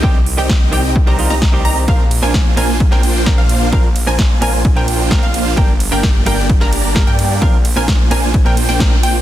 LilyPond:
<<
  \new Staff \with { instrumentName = "Synth pluck" } { \time 4/4 \key bes \mixolydian \tempo 4 = 130 g''16 r8 g''8. g''8 r16 bes''8 bes''8. bes''16 r16 | f''16 r8 aes''8. aes''8 r16 g''4 f''8. | f''16 r8 aes''8. aes''8 r16 g''4 f''8. | g''16 r8 g''8. g''8 r16 bes''4 g''8. |
f''16 r8 aes''8. aes''8 r16 g''8 g''8. g''16 r16 | }
  \new Staff \with { instrumentName = "Supersaw synth" } { \time 4/4 \key bes \mixolydian <c' g' g''>16 r8 <c' ees' g' ees'' g''>8. <c' ees' g' ees'' g''>8 r16 <c' ees' g' ees'' bes''>8 <c' ees' g' ees'' bes''>8. <c' ees' g' ees'' bes''>16 r16 | <bes d' f' c'' f''>16 r8 <bes d' f' c'' aes''>8. <bes d' f' c'' aes''>8 r16 <bes d' f' c'' g''>4 <bes d' f' c'' f''>8. | r8. <bes d' f' c'' aes''>8. <bes d' f' c'' aes''>8 r16 <bes d' f' c'' g''>4 <bes d' f' c'' f''>8. | <bes d' g' d'' g''>16 r8 <bes d' g' d'' g''>8. <bes d' g' d'' g''>8 r16 <bes d' g' d'' bes''>4 <bes d' g' d'' g''>8. |
<bes c''>16 r8 <bes d' f' c'' aes''>8. <bes d' f' c'' aes''>8 r16 <bes d' f' c'' g''>8 <bes d' f' c'' g''>8. <bes d' f' c'' g''>16 r16 | }
  \new Staff \with { instrumentName = "Clean electric guitar" } { \time 4/4 \key bes \mixolydian <ees g c' g'>16 r8 <ees g c' g'>16 r8 <ees g c' g'>16 r8 <ees g c' g'>16 <ees g c' f'>16 r8 <ees g c' g'>8. | <bes, f c' d' bes'>16 r8 <bes, f c' d' bes'>16 r8 <bes, f c' d' bes'>16 r8 <bes, f c' d' bes'>16 r8 <bes, f c' d' bes'>16 r8. | <bes, f c' d' bes'>16 r8 <bes, f c' d' bes'>16 r8 <bes, f c' d' bes'>16 r8 <bes, f c' d' bes'>16 r8 <bes, f c' d' bes'>16 r8. | <g, g bes d' bes'>16 r8 <g, g bes d' bes'>16 r8 <g, g bes d' bes'>16 r8 <g, g bes d' bes'>16 r8 <g, g bes d' bes'>16 r8. |
<bes, f c' d' bes'>16 r8 <bes, f c' d' bes'>16 r8 <bes, f c' d' bes'>16 r8 <bes, f c' d' bes'>16 r8 <bes, f c' d' bes'>16 r8. | }
  \new Staff \with { instrumentName = "Detuned saw bass" } { \clef bass \time 4/4 \key bes \mixolydian c,8. c,8. c,8. c,8 c,8. c,8 | bes,,8. bes,,8. bes,,8. bes,,4 bes,,8. | bes,,8. bes,,8. bes,,8. bes,,4 bes,,8. | g,,8. g,,8. g,,8. g,,4 g,8. |
bes,,8. bes,,8. bes,,8. bes,,8 bes,,8. bes,,8 | }
  \new DrumStaff \with { instrumentName = "Drums" } \drummode { \time 4/4 bd8 hho8 <bd sn>8 hho8 bd8 hho16 sn16 <bd sn>8 hho8 | <bd cymr>8 <hho cymr>8 <bd cymr sn>8 <hho cymr>8 <bd cymr>16 sn16 <hho cymr>8 <bd cymr sn>8 <hho cymr>8 | <bd cymr>8 <hho cymr>8 <bd cymr sn>8 <hho cymr>8 <bd cymr>8 <hho cymr>8 <bd cymr sn>8 <hho cymr>8 | <bd cymr>8 <hho cymr>8 <bd cymr sn>8 <hho cymr>8 <bd cymr>16 sn16 <hho cymr>8 <bd cymr sn>8 <hho cymr>8 |
<bd cymr>8 <hho cymr>8 <bd cymr sn>8 <hho cymr>8 <bd cymr>8 <hho cymr>16 sn16 <bd cymr sn>8 <hho cymr>8 | }
>>